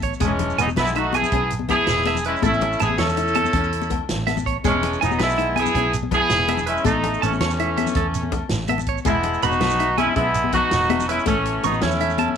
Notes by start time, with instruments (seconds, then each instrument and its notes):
Already playing: fingered electric bass A1, steel-string acoustic guitar B3
0.02 clean electric guitar C#5, kick, closed hi-hat
0.13 shekere
0.20 fingered electric bass E1, horn section G#3 C#4, steel-string acoustic guitar G#3, clean electric guitar G#4, kick, closed hi-hat, high conga, low agogo, shekere
0.25 tenor saxophone E3
0.30 low conga
0.39 closed hi-hat, low conga, low agogo
0.50 shekere
0.58 fingered electric bass E1, steel-string acoustic guitar B3, horn section B3 D#4, clean electric guitar G#5, closed hi-hat, shekere
0.62 tenor saxophone F#3
0.67 high conga, shekere
0.76 fingered electric bass B1, horn section B3 E4, clean electric guitar B4, snare, closed hi-hat, low conga, low agogo
0.81 tenor saxophone G#3
0.87 shekere
0.95 tenor saxophone A3, steel-string acoustic guitar D#4, horn section D#4 F#4, clean electric guitar E5, closed hi-hat
1.05 low conga
1.13 horn section E4 G#4, clean electric guitar G#5, closed hi-hat, high conga, low conga, low agogo, shekere
1.17 tenor saxophone B3
1.22 low conga, shekere
1.32 fingered electric bass B1, steel-string acoustic guitar C#4, clean electric guitar G#4, kick, closed hi-hat, low agogo
1.50 closed hi-hat, shekere
1.59 high conga, low conga
1.69 steel-string acoustic guitar B3, tenor saxophone B3, horn section E4 G#4, kick, closed hi-hat, low conga, low agogo, shekere
1.87 fingered electric bass E1, snare, closed hi-hat, shekere
2.05 steel-string acoustic guitar B3, clean electric guitar E5, snare, closed hi-hat, high conga, low agogo
2.15 low conga, shekere
2.24 tenor saxophone G#3, horn section C#4 E4, clean electric guitar B4, closed hi-hat
2.36 shekere
2.42 fingered electric bass A1, steel-string acoustic guitar A3, tenor saxophone A3, horn section C#4 E4, clean electric guitar A4, kick, closed hi-hat, high conga, low agogo, shekere
2.53 low conga, shekere
2.61 closed hi-hat, low conga, low agogo
2.73 shekere
2.79 fingered electric bass A1, tenor saxophone B3, steel-string acoustic guitar C#4, horn section E4 G#4, clean electric guitar A5, closed hi-hat, shekere
2.89 high conga, low conga
2.98 fingered electric bass E2, tenor saxophone C#4, horn section E4 A4, clean electric guitar C#5, snare, closed hi-hat, low conga, low agogo
3.08 low conga, shekere
3.17 steel-string acoustic guitar E4, muted clean electric guitar stroke, closed hi-hat, shekere
3.28 shekere
3.34 clean electric guitar A5, closed hi-hat, high conga, low conga, low agogo
3.45 low conga, shekere
3.53 fingered electric bass E2, steel-string acoustic guitar C#4, clean electric guitar A4, kick, closed hi-hat, low agogo
3.64 shekere
3.73 closed hi-hat, low conga
3.81 high conga, shekere
3.90 steel-string acoustic guitar B3, kick, closed hi-hat, low agogo
4.09 fingered electric bass A1, snare, closed hi-hat, shekere
4.19 low conga
4.27 steel-string acoustic guitar B3, clean electric guitar E5, snare, closed hi-hat, high conga, low agogo
4.37 low conga, shekere
4.46 clean electric guitar C#5, kick, closed hi-hat
4.55 low conga
4.64 fingered electric bass E1, steel-string acoustic guitar G#3, horn section G#3 C#4, clean electric guitar G#4, kick, closed hi-hat, high conga, low agogo, shekere
4.70 tenor saxophone E3
4.74 low conga
4.83 closed hi-hat, low conga, low agogo
4.93 shekere
5.01 fingered electric bass E1, horn section B3 D#4, steel-string acoustic guitar E4, clean electric guitar G#5, closed hi-hat, shekere
5.05 tenor saxophone F#3
5.11 high conga, shekere
5.19 fingered electric bass B1, tenor saxophone G#3, horn section B3 E4, clean electric guitar B4, snare, closed hi-hat, low conga, low agogo
5.30 shekere
5.37 steel-string acoustic guitar D#4, clean electric guitar E5, closed hi-hat
5.47 low conga
5.56 tenor saxophone B3, horn section E4 G#4, clean electric guitar G#5, closed hi-hat, high conga, low conga, low agogo, shekere
5.66 low conga, shekere
5.74 fingered electric bass B1, steel-string acoustic guitar C#4, clean electric guitar G#4, kick, closed hi-hat, low agogo
5.93 closed hi-hat, shekere
6.03 high conga, low conga
6.11 tenor saxophone B3, horn section E4 G#4, muted steel-string acoustic guitar stroke, kick, closed hi-hat, low conga, low agogo, shekere
6.30 fingered electric bass E1, snare, closed hi-hat, shekere
6.48 steel-string acoustic guitar B3, clean electric guitar E5, closed hi-hat, high conga, low agogo
6.57 low conga, shekere
6.66 tenor saxophone G#3, horn section C#4 E4, clean electric guitar B4, closed hi-hat
6.77 shekere
6.85 fingered electric bass A1, steel-string acoustic guitar A3, horn section A3 D#4, tenor saxophone A3, clean electric guitar A4, kick, closed hi-hat, high conga, low agogo, shekere
6.95 low conga
7.04 closed hi-hat, low conga, low agogo
7.14 shekere
7.22 fingered electric bass A1, tenor saxophone E3, horn section A3 C#4, steel-string acoustic guitar C#4, clean electric guitar A5, closed hi-hat, shekere
7.32 high conga, shekere
7.40 fingered electric bass E2, tenor saxophone E3, horn section A3 C#4, clean electric guitar C#5, snare, closed hi-hat, low conga, low agogo
7.50 shekere
7.59 steel-string acoustic guitar E4, clean electric guitar E5, closed hi-hat
7.68 low conga
7.77 clean electric guitar E5, closed hi-hat, high conga, low conga, low agogo, shekere
7.86 low conga, shekere
7.95 fingered electric bass E2, clean electric guitar A4, muted steel-string acoustic guitar stroke, kick, closed hi-hat, low agogo
8.14 closed hi-hat, shekere
8.23 high conga
8.32 muted steel-string acoustic guitar stroke, kick, closed hi-hat, low conga, low agogo, shekere
8.49 fingered electric bass A1, snare, closed hi-hat, low conga, shekere
8.68 steel-string acoustic guitar B3, clean electric guitar E5, closed hi-hat, high conga, low agogo
8.78 low conga, shekere
8.87 clean electric guitar C#5, kick, closed hi-hat
8.98 shekere
9.05 fingered electric bass E1, steel-string acoustic guitar G#3, tenor saxophone G#3, horn section B3 E4, clean electric guitar G#4, kick, closed hi-hat, high conga, low agogo, shekere
9.14 low conga
9.23 closed hi-hat, low conga, low agogo
9.34 shekere
9.42 fingered electric bass E1, tenor saxophone B3, steel-string acoustic guitar B3, horn section D#4 F#4, clean electric guitar B5, closed hi-hat, shekere
9.51 high conga, shekere
9.60 fingered electric bass B1, clean electric guitar B4, snare, closed hi-hat, low conga, low agogo
9.70 shekere
9.79 steel-string acoustic guitar D#4, clean electric guitar E5, closed hi-hat
9.89 low conga
9.98 tenor saxophone G#3, horn section C#4 E4, clean electric guitar G#5, closed hi-hat, high conga, low conga, low agogo, shekere
10.07 low conga
10.16 fingered electric bass B1, tenor saxophone G#3, horn section B3 E4, steel-string acoustic guitar C#4, clean electric guitar G#4, kick, closed hi-hat, low agogo
10.34 closed hi-hat, shekere
10.44 high conga, low conga
10.52 steel-string acoustic guitar B3, tenor saxophone B3, horn section D#4 F#4, kick, closed hi-hat, low conga, low agogo, shekere
10.71 fingered electric bass E1, snare, closed hi-hat, low conga, shekere
10.90 steel-string acoustic guitar B3, clean electric guitar E5, closed hi-hat, high conga, low agogo
10.99 low conga, shekere
11.08 tenor saxophone G#3, horn section C#4 E4, clean electric guitar B4, closed hi-hat
11.19 shekere
11.26 fingered electric bass A1, tenor saxophone E3, horn section A3 C#4, steel-string acoustic guitar A3, clean electric guitar A4, kick, closed hi-hat, high conga, low conga, low agogo, shekere
11.45 closed hi-hat, low agogo, shekere
11.63 fingered electric bass A1, tenor saxophone F#3, horn section B3 D#4, steel-string acoustic guitar C#4, clean electric guitar C#6, closed hi-hat, shekere
11.72 high conga, shekere
11.81 fingered electric bass E2, tenor saxophone A3, horn section C#4 E4, clean electric guitar C#5, snare, closed hi-hat, low conga, low agogo
11.91 shekere
12.00 steel-string acoustic guitar E4, clean electric guitar E5, closed hi-hat
12.09 low conga, shekere
12.18 clean electric guitar A5, closed hi-hat, high conga, low conga, low agogo
12.28 low conga